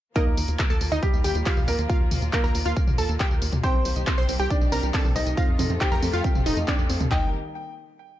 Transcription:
0.16 grand piano A#3 A#4, synth pluck D#4 D#5, kick, closed hi-hat, tambourine
0.27 analog synth bass D#2
0.37 analog synth bass D#2, open hi-hat, tambourine
0.48 analog synth bass D#2, closed hi-hat, tambourine
0.59 kick, clap, closed hi-hat, tambourine
0.70 analog synth bass D#2, synth pluck A4 A5, tambourine
0.81 analog synth bass D#2, open hi-hat, tambourine
0.92 analog synth bass D#2, synth pluck D#4 D#5, closed hi-hat, tambourine
1.03 grand piano G3 G4, kick, closed hi-hat, tambourine
1.13 analog synth bass D#2, tambourine
1.24 analog synth bass D#2, synth pluck G4 G5, open hi-hat, tambourine
1.35 analog synth bass D#2, closed hi-hat, tambourine
1.46 synth pluck F4 F5, kick, clap, open hi-hat, tambourine
1.57 analog synth bass D#2, mid tom, tambourine
1.68 analog synth bass D#2, grand piano A#3 A#4, open hi-hat, tambourine
1.79 analog synth bass D#2, closed hi-hat, tambourine
1.90 synth pluck F4 F5, kick, closed hi-hat, tambourine
2.00 analog synth bass D#2
2.11 analog synth bass D#2, open hi-hat, mid tom, tambourine
2.22 analog synth bass D#2, closed hi-hat, tambourine
2.33 grand piano A#3 A#4, kick, clap, closed hi-hat, tambourine
2.44 analog synth bass D#2, synth pluck A#4 A#5, tambourine
2.55 analog synth bass D#2, open hi-hat, tambourine
2.66 analog synth bass D#2, synth pluck F4 F5, closed hi-hat, tambourine
2.77 kick, closed hi-hat, tambourine
2.87 analog synth bass D#2, mid tom, tambourine
2.98 analog synth bass D#2, synth pluck A4 A5, open hi-hat, tambourine
3.09 analog synth bass D#2, closed hi-hat, tambourine
3.20 synth pluck G4 G5, kick, clap, closed hi-hat, tambourine
3.31 analog synth bass D#2, tambourine
3.42 analog synth bass D#2, open hi-hat, tambourine
3.53 analog synth bass D#2, closed hi-hat, mid tom, tambourine
3.63 string section C3 G3 G4, synth arpeggio sound C4, grand piano C4 C5, synth pluck G4 G5, kick, closed hi-hat, tambourine
3.74 analog synth bass C2, synth arpeggio sound C4
3.85 analog synth bass C2, synth arpeggio sound C5, open hi-hat, tambourine
3.96 analog synth bass C2, synth arpeggio sound D#5, closed hi-hat, tambourine
4.07 synth arpeggio sound C4, kick, clap, closed hi-hat, tambourine
4.18 analog synth bass C2, synth pluck C5 C6, tambourine
4.29 analog synth bass C2, synth arpeggio sound C4, open hi-hat, tambourine
4.40 analog synth bass C2, synth arpeggio sound C4, synth pluck G4 G5, closed hi-hat, tambourine
4.50 grand piano D4 D5, synth arpeggio sound C5, kick, closed hi-hat, tambourine
4.61 analog synth bass C2, synth arpeggio sound D#5, tambourine
4.72 analog synth bass C2, synth arpeggio sound C4, synth pluck A#4 A#5, open hi-hat, tambourine
4.83 analog synth bass C2, closed hi-hat, tambourine
4.94 synth arpeggio sound C4, synth pluck A4 A5, kick, clap, open hi-hat, tambourine
5.05 analog synth bass C2, synth arpeggio sound C4, mid tom, tambourine
5.16 analog synth bass C2, grand piano D#4 D#5, synth arpeggio sound C5, open hi-hat, tambourine
5.26 analog synth bass C2, synth arpeggio sound D#5, closed hi-hat, tambourine
5.37 string section F3 A3 F4 A4, synth arpeggio sound C4, synth pluck F4 F5, kick, closed hi-hat, tambourine
5.48 analog synth bass F2
5.59 analog synth bass F2, synth arpeggio sound C4, open hi-hat, mid tom, tambourine
5.70 analog synth bass F2, synth arpeggio sound C4, closed hi-hat, tambourine
5.81 grand piano G4 G5, synth arpeggio sound C5, kick, clap, closed hi-hat, tambourine
5.92 analog synth bass F2, synth pluck A#4 A#5, synth arpeggio sound F5, tambourine
6.03 analog synth bass F2, synth arpeggio sound C4, open hi-hat, tambourine
6.13 analog synth bass F2, synth pluck F4 F5, closed hi-hat, tambourine
6.24 synth arpeggio sound C4, kick, closed hi-hat, tambourine
6.35 analog synth bass F1, synth arpeggio sound C4, mid tom, tambourine
6.46 analog synth bass F1, synth pluck D#4 D#5, synth arpeggio sound C5, open hi-hat, tambourine
6.57 analog synth bass F2, synth arpeggio sound F5, closed hi-hat, tambourine
6.68 synth arpeggio sound C4, synth pluck D4 D5, kick, clap, closed hi-hat, tambourine
6.79 analog synth bass F2, tambourine
6.90 analog synth bass F2, synth arpeggio sound C4, open hi-hat, tambourine
7.00 analog synth bass D#2, synth arpeggio sound C4, closed hi-hat, mid tom, tambourine
7.11 analog synth bass D#2, string section G3 A#3, synth arpeggio sound D#4, synth pluck D#5, grand piano G5, kick, clap, floor tom

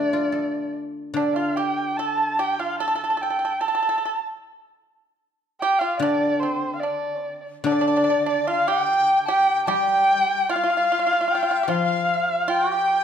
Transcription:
Already playing: guzheng D3 A3 D4, erhu D5
0.13 guzheng F4
0.32 guzheng A4
1.14 guzheng D3, pipa D4, erhu D5
1.36 pipa F4, erhu F5
1.56 pipa G4, erhu G5
1.97 pipa A4, erhu A5
2.39 pipa G4, erhu G5
2.59 pipa F4, erhu F5
2.79 pipa A4, erhu A5
2.88 pipa A4
2.95 pipa A4, erhu A5
3.04 pipa A4
3.10 pipa A4
3.17 pipa A4
3.21 pipa A4, erhu G5
3.30 pipa A4
3.39 pipa A4
3.45 pipa A4
3.61 pipa A4, erhu A5
3.68 pipa A4
3.75 pipa A4
3.82 pipa A4
3.89 pipa A4
3.98 pipa A4
4.05 pipa A4
5.61 pipa G4, erhu G5
5.79 pipa F4, erhu F5
5.99 guzheng D3, pipa D4, erhu D5
6.40 pipa C4, erhu C5
6.75 erhu F5
6.80 pipa D4, erhu D5
7.20 pipa C4
7.64 guzheng D3, pipa D4, erhu D5, dizi D5
7.72 pipa D4
7.81 pipa D4
7.88 pipa D4
7.97 pipa D4
8.04 pipa D4
8.10 pipa D4
8.26 pipa D4, dizi D5
8.47 pipa F4, erhu F5, dizi F5
8.67 pipa G4, erhu G5, dizi G5
9.25 pipa G4, erhu G5, dizi A5
9.31 dizi G5
9.65 guzheng G3, pipa G4, dizi A5
9.69 erhu G5, dizi G5
10.49 pipa F4, erhu F5, dizi F5
10.56 pipa F4
10.63 pipa F4
10.70 pipa F4
10.77 pipa F4
10.84 pipa F4
10.92 pipa F4
10.99 pipa F4
11.07 pipa F4
11.13 pipa F4
11.21 pipa F4
11.28 pipa F4, dizi G5
11.35 pipa F4
11.43 pipa F4
11.51 pipa F4
11.63 pipa G4
11.68 guzheng F3, pipa F4, dizi F5, erhu F5
12.48 pipa F4, erhu G5, dizi G5
12.71 pipa G4

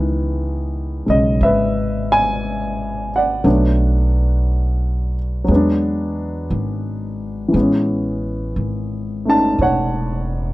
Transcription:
Already playing: upright bass C#2, grand piano D#3 E3 G#3 B3 E4
1.06 upright bass B1, grand piano C#3 G#3 D#5
1.41 upright bass G#1, grand piano B4 E5
2.12 grand piano G#5
3.16 grand piano D5 F#5
3.44 upright bass B1, grand piano F#3 A3 B3 D4
5.44 upright bass E2, grand piano F#3 G#3
5.51 grand piano B3 D4
6.50 upright bass G#1
7.48 grand piano E3
7.53 upright bass A1, grand piano G#3 B3
7.60 grand piano C#4
8.56 upright bass G#1
9.25 grand piano A3 C#4 D#4
9.30 grand piano A5
9.59 upright bass E1, grand piano C#5 F#5

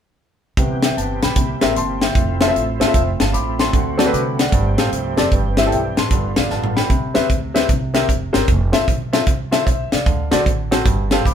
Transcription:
0.57 upright bass C2, grand piano C3, tonewheel organ E3 B3 C4 G4, kick, closed hi-hat
0.83 grand piano E5 G5, snare, closed hi-hat
0.97 upright bass G1, grand piano A5, closed hi-hat
1.22 upright bass B1, grand piano G5 B5, snare, closed hi-hat
1.36 upright bass C2, grand piano C3, tonewheel organ A#3 E4, kick, closed hi-hat
1.61 upright bass A1, grand piano C4 G4 A#4 E5, snare, closed hi-hat
1.76 upright bass G1, grand piano A5 C6, closed hi-hat
2.02 grand piano E5 G5, snare, closed hi-hat
2.15 upright bass F1, tonewheel organ A3 C4 F4, kick, closed hi-hat
2.41 grand piano C4 F4 A4 E5, snare, closed hi-hat
2.48 grand piano C4 F4 A4 E5
2.56 upright bass A1, closed hi-hat
2.80 upright bass G1, grand piano C4 F4 A4 E5, snare, closed hi-hat
2.87 grand piano C4 F4 A4 E5
2.94 upright bass F1, kick, closed hi-hat
3.20 upright bass G1, grand piano F5 A5, snare, closed hi-hat
3.33 upright bass A1, grand piano B5 D6, closed hi-hat
3.59 grand piano A5 C6, snare, closed hi-hat
3.73 upright bass D2, grand piano D3, tonewheel organ D3 F#4, kick, closed hi-hat
3.98 grand piano C4 F#4 A4 D5, snare, closed hi-hat
4.06 grand piano C4 F#4 A4 B4
4.13 upright bass C2, grand piano D6, closed hi-hat
4.39 grand piano D5 F#5, snare, closed hi-hat
4.52 upright bass G1, grand piano G2, tonewheel organ F3 G4, kick, closed hi-hat
4.78 upright bass A1, grand piano C4 G4 A4 F5, snare, closed hi-hat
4.92 upright bass C2, closed hi-hat
5.17 upright bass F1, grand piano C4 G4 A4 D5, snare, closed hi-hat
5.32 upright bass G1, grand piano G2, tonewheel organ E3 G3, kick, closed hi-hat
5.57 grand piano C4 E4 G4 E5, snare, closed hi-hat
5.66 grand piano C4 E4 G4 A4
5.72 upright bass B1, grand piano E5 G5, closed hi-hat
5.97 upright bass A1, grand piano A5 C6, snare, closed hi-hat
6.10 upright bass G1, grand piano G2, tonewheel organ D3 B3 F4, kick, closed hi-hat
6.36 upright bass B1, grand piano D5 F5, snare, closed hi-hat
6.50 upright bass A1, grand piano F5 A5, snare
6.64 mid tom
6.76 grand piano G5 B5, snare
6.89 upright bass C2, grand piano C3, kick, closed hi-hat
7.14 upright bass E2, grand piano C4 G4 B4 E5, snare, closed hi-hat
7.30 upright bass D2, kick, closed hi-hat
7.54 grand piano C4 G4 B4 E5, snare, closed hi-hat
7.68 upright bass C2, grand piano C3, kick, closed hi-hat
7.94 grand piano C4 G4 A#4 E5, snare, closed hi-hat
8.09 upright bass F1, kick, closed hi-hat
8.33 upright bass G1, grand piano C4 G4 A#4 C5, snare, closed hi-hat
8.48 upright bass F1, kick, closed hi-hat
8.72 upright bass A1, grand piano C4 F4 A4 E5, snare, closed hi-hat
8.88 upright bass B1, kick, closed hi-hat
9.13 grand piano C4 F4 A4 E5, snare, closed hi-hat
9.26 upright bass C2, kick, closed hi-hat
9.51 grand piano C4 F4 A4 E5, snare, closed hi-hat
9.66 upright bass B1, grand piano C5 E5, kick, closed hi-hat
9.92 upright bass C2, grand piano D5 F5, snare, closed hi-hat
10.06 upright bass D2, grand piano D3, kick, closed hi-hat
10.31 upright bass B1, grand piano C4 F#4 A4 D5, snare, closed hi-hat
10.46 upright bass A1, kick, closed hi-hat
10.71 grand piano C4 F#4 A4 C5, snare, closed hi-hat
10.85 upright bass G1, grand piano G2, kick, closed hi-hat
11.11 grand piano C4 G4 A4 F5, snare, closed hi-hat
11.25 upright bass F1, grand piano B5 D6, kick, closed hi-hat

